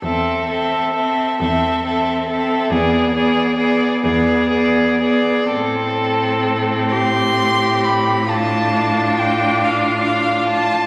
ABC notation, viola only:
X:1
M:12/8
L:1/8
Q:3/8=44
K:Am
V:1 name="Viola"
C C C C C C B, B, B, B, B, B, | C6 D6 |]